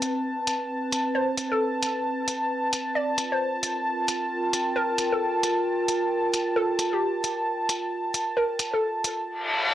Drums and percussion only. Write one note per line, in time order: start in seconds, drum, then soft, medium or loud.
0.02 closed hi-hat medium
0.47 closed hi-hat loud
0.92 closed hi-hat medium
1.37 closed hi-hat medium
1.82 closed hi-hat medium
2.28 closed hi-hat medium
2.73 closed hi-hat medium
3.18 closed hi-hat medium
3.63 closed hi-hat medium
4.08 closed hi-hat loud
4.53 closed hi-hat loud
4.98 closed hi-hat loud
5.43 closed hi-hat loud
5.89 closed hi-hat loud
6.34 closed hi-hat loud
6.79 closed hi-hat loud
7.24 closed hi-hat loud
7.69 closed hi-hat loud
8.14 closed hi-hat loud
8.59 closed hi-hat loud
9.04 closed hi-hat loud